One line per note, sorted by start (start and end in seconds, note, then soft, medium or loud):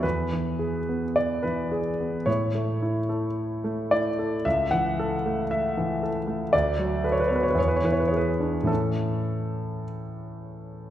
0.03 2.23 E2 soft
0.03 1.16 B4 medium
0.32 0.77 E3 soft
0.59 1.04 G#4 soft
0.89 1.78 B3 soft
1.16 1.44 D5 medium
1.43 1.89 E3 soft
1.43 2.27 B4 medium
1.72 2.16 G#4 soft
2.00 2.27 B3 soft
2.26 4.41 A2 medium
2.26 3.91 C#5 medium
2.55 2.99 A3 soft
2.83 3.27 E4 soft
3.09 3.97 A4 soft
3.64 4.07 A3 soft
3.91 4.35 E4 soft
3.91 4.45 D5 medium
4.19 4.45 A4 soft
4.45 6.49 C#2 soft
4.45 4.72 E5 medium
4.71 5.14 E3 soft
4.71 5.50 F#5 medium
4.99 5.41 A4 soft
5.26 6.08 A3 soft
5.51 6.02 E5 medium
5.77 6.18 E3 soft
6.03 6.43 A4 soft
6.27 6.53 A3 soft
6.53 7.54 D2 medium
6.53 7.04 D5 medium
6.78 7.20 F#3 soft
7.04 7.47 A4 soft
7.04 7.12 B4 medium
7.12 7.20 C#5 medium
7.20 7.28 B4 medium
7.28 7.57 B3 soft
7.28 7.36 C#5 medium
7.36 7.44 B4 medium
7.43 7.52 C#5 medium
7.50 7.59 B4 medium
7.55 8.65 E2 soft
7.55 7.67 C#5 medium
7.68 7.76 B4 medium
7.76 7.84 C#5 medium
7.84 8.29 E3 soft
7.84 7.93 B4 medium
7.92 8.01 C#5 medium
8.00 8.09 B4 medium
8.08 8.57 G#4 soft
8.08 8.17 C#5 medium
8.16 8.68 B4 medium
8.40 8.69 D4 soft
8.63 10.90 A2 soft
8.63 10.90 E3 soft
8.63 10.90 C#4 soft
8.63 9.84 A4 medium